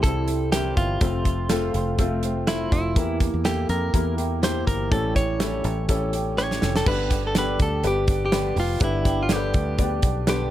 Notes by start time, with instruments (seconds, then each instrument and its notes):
Already playing: upright piano G2 G3 C4 E4 G4
0.03 fingered electric bass C2, upright piano G3 C4 E4 A4, steel-string acoustic guitar G3 C4 E4, clean electric guitar A4, kick, closed hi-hat
0.28 steel-string acoustic guitar G3 C4 E4, closed hi-hat
0.52 steel-string acoustic guitar C3 E3 G3 C4 E4, upright piano G3 C4 E4 A#4, clean electric guitar G4, snare, closed hi-hat
0.77 fingered electric bass G1, clean electric guitar F4, kick, closed hi-hat
1.01 fingered electric bass F1, steel-string acoustic guitar F2 C3 F3 A3 C4 F4, upright piano C3 A3 C4 F4 A4, kick, closed hi-hat
1.25 kick, closed hi-hat
1.49 steel-string acoustic guitar F2 C3 F3 A3 C4 F4, upright piano A3 C4 F4 A4, snare, closed hi-hat
1.74 fingered electric bass F1, steel-string acoustic guitar F3 A3 C4 F4, closed hi-hat
1.98 steel-string acoustic guitar F3 A3 C4 F4, upright piano A3 C4 F4 A4, kick, closed hi-hat
2.22 steel-string acoustic guitar F3 A3 C4 F4, closed hi-hat
2.47 steel-string acoustic guitar F2 C3 F3 A3 C4 F4, upright piano A3 C4 F4 A4, clean electric guitar E4, snare, closed hi-hat
2.72 fingered electric bass F1, clean electric guitar E4, kick, closed hi-hat
2.96 fingered electric bass E2, steel-string acoustic guitar E3 A#3 E4 G4, upright piano E3 A#3 E4 F4 A#4, kick, closed hi-hat
3.02 upright piano G4
3.20 kick, snare, closed hi-hat
3.34 fingered electric bass E2
3.44 steel-string acoustic guitar E3 A#3 E4 G4, upright piano A#3 E4 G4 A4, clean electric guitar G4, snare, closed hi-hat
3.68 fingered electric bass F2, steel-string acoustic guitar A#3 E4 G4, clean electric guitar A#4, closed hi-hat
3.93 fingered electric bass E2, steel-string acoustic guitar E3 A#3 E4 G4, upright piano A#3 E4 G4 A#4, kick, closed hi-hat
4.17 steel-string acoustic guitar A#3 E4 G4, closed hi-hat
4.42 steel-string acoustic guitar E3 A#3 E4 G4, upright piano A#3 E4 G4 C5, clean electric guitar C5, snare, closed hi-hat
4.67 fingered electric bass G1, clean electric guitar A#4, kick, closed hi-hat
4.91 fingered electric bass A1, steel-string acoustic guitar A2 E3 G3 C#4 G4, upright piano A2 E3 C#4 E4 G4 A4, clean electric guitar A4, kick, closed hi-hat
5.16 clean electric guitar C#5, kick, snare, closed hi-hat
5.39 steel-string acoustic guitar A2 E3 G3 C#4 G4, upright piano C#4 E4 G4 A4, snare, closed hi-hat
5.64 fingered electric bass A1, steel-string acoustic guitar G3 C#4 G4, closed hi-hat
5.88 steel-string acoustic guitar E3 G3 C#4 G4, upright piano C#4 E4 G4 A4, kick, closed hi-hat
6.12 steel-string acoustic guitar G3 C#4 G4, closed hi-hat
6.37 steel-string acoustic guitar A2 E3 G3 C#4 G4, upright piano E4 C#5, clean electric guitar C#5, snare
6.51 snare
6.62 fingered electric bass F1, upright piano C#4 A4, snare
6.76 clean electric guitar A4, snare
6.86 fingered electric bass G1, steel-string acoustic guitar G2 D3 G3 B3 D4 G4, upright piano G2 D3 G3 B3 D4 G4 B4, clean electric guitar B4, kick, crash
7.10 steel-string acoustic guitar G3 B3 D4 G4, kick, snare, closed hi-hat
7.27 clean electric guitar A4
7.34 steel-string acoustic guitar G2 D3 G3 B3 D4 G4, upright piano G3 B3 D4 G4 A4, snare, closed hi-hat
7.38 clean electric guitar B4
7.59 fingered electric bass D2, clean electric guitar A4, kick, closed hi-hat
7.83 fingered electric bass G1, steel-string acoustic guitar G3 B3 D4 G4, upright piano G3 B3 D4 G4 B4, closed hi-hat
7.87 clean electric guitar G4
8.07 steel-string acoustic guitar G3 B3 D4 G4, kick, closed hi-hat
8.26 clean electric guitar G4
8.31 steel-string acoustic guitar G2 D3 G3 B3 D4 G4, upright piano G3 B3 D4 G4 B4, snare, closed hi-hat
8.56 fingered electric bass F1, steel-string acoustic guitar G3 B3 D4 G4, open hi-hat
8.60 clean electric guitar F4
8.80 fingered electric bass G1, steel-string acoustic guitar G2 D3 G3 B3 D4 G4, upright piano G2 D3 G3 B3 D4 G4 B4, clean electric guitar E4, kick, closed hi-hat
9.05 steel-string acoustic guitar G3 B3 D4 G4, kick, snare, closed hi-hat
9.23 clean electric guitar F4
9.29 steel-string acoustic guitar G2 D3 G3 B3 D4 G4, upright piano G3 B3 D4 G4 A4, clean electric guitar G4, snare, closed hi-hat
9.36 upright piano B4
9.54 fingered electric bass D2, kick, closed hi-hat
9.78 steel-string acoustic guitar G3 B3 D4 G4, upright piano G3 B3 D4 G4 D5, kick, closed hi-hat
10.02 fingered electric bass B1, steel-string acoustic guitar G3 B3 D4 G4, kick, closed hi-hat
10.27 steel-string acoustic guitar G2 D3 G3 B3 D4 G4, upright piano G3 B3 D4 G4 B4, clean electric guitar G4, snare, closed hi-hat